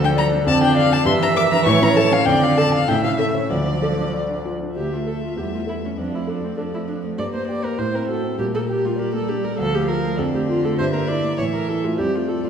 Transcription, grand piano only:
0.00 0.45 D2 loud
0.00 0.26 D4 medium
0.16 0.41 D5 medium
0.32 0.47 D4 medium
0.46 1.05 F2 loud
0.61 0.86 D4 medium
0.77 1.01 D5 medium
0.92 1.07 D4 medium
1.05 1.65 G2 loud
1.22 1.46 D4 medium
1.36 1.61 A#4 medium
1.51 1.67 D4 medium
1.66 2.26 A2 loud
1.82 2.06 C#4 medium
1.96 2.21 A4 medium
2.11 2.27 C#4 medium
2.26 2.87 F2 loud
2.42 2.67 D4 medium
2.58 2.83 A4 medium
2.73 2.89 D4 medium
2.88 3.49 A2 medium
3.04 3.30 C#4 medium
3.19 3.45 A4 medium
3.35 3.51 C#4 medium
3.50 4.72 D2 medium
3.66 3.92 D4 medium
3.82 4.08 A4 medium
3.98 4.23 D4 medium
4.14 4.39 D5 medium
4.29 4.54 D4 medium
4.45 4.70 F4 medium
4.61 4.76 D4 medium
4.76 5.36 D2 soft
4.90 5.16 A3 soft
5.06 5.31 A4 soft
5.21 5.37 A3 soft
5.36 5.96 E2 soft
5.51 5.76 A3 soft
5.66 5.92 A4 soft
5.82 5.98 A3 soft
5.98 7.15 F2 soft
6.12 6.37 A3 soft
6.27 6.52 A4 soft
6.42 6.67 A3 soft
6.57 6.82 A4 soft
6.72 6.97 A3 soft
6.87 7.12 D4 soft
7.04 7.19 A3 soft
7.18 7.77 G2 medium
7.34 7.58 A#3 soft
7.49 7.73 G4 soft
7.63 7.79 A#3 soft
7.78 8.37 A2 medium
7.94 8.18 C4 soft
8.08 8.33 F#4 medium
8.23 8.39 C4 soft
8.38 9.55 A#2 medium
8.54 8.78 A#3 soft
8.70 8.94 G4 medium
8.85 9.08 A#3 soft
8.99 9.23 A#4 medium
9.14 9.38 A#3 medium
9.29 9.53 D4 medium
9.44 9.59 A#3 soft
9.59 10.17 D2 medium
9.74 9.98 A3 medium
9.89 10.13 F4 medium
10.04 10.19 A3 soft
10.19 10.77 F2 medium
10.34 10.58 A3 medium
10.49 10.73 F4 medium
10.64 10.79 A3 medium
10.80 11.38 G2 medium
10.93 11.18 A#3 medium
11.10 11.33 E4 medium
11.24 11.39 A#3 soft
11.38 11.97 A2 medium
11.55 11.79 A3 soft
11.70 11.94 E4 medium
11.84 11.99 A3 soft
11.99 12.50 F2 medium
12.14 12.38 A3 soft
12.29 12.50 F4 soft
12.44 12.50 A3 soft

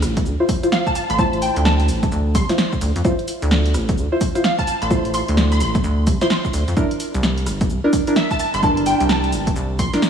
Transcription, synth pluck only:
0.72 0.84 F5 medium
0.87 0.92 A5 medium
0.95 1.05 A5 medium
1.10 1.17 C6 loud
1.19 1.38 A5 medium
1.42 1.61 G5 medium
1.65 2.12 A5 medium
2.35 2.73 C6 medium
4.44 4.56 F5 medium
4.59 4.64 A5 medium
4.67 4.77 A5 medium
4.82 4.89 C6 medium
5.14 5.33 C6 medium
5.52 5.59 C6 medium
5.61 5.98 C6 medium
6.22 6.54 C6 medium
8.16 8.28 E5 medium
8.31 8.36 A5 medium
8.40 8.49 A5 medium
8.54 8.61 C6 medium
8.63 8.82 A5 medium
8.86 9.06 G5 medium
9.10 9.56 A5 medium
9.79 10.10 C6 medium

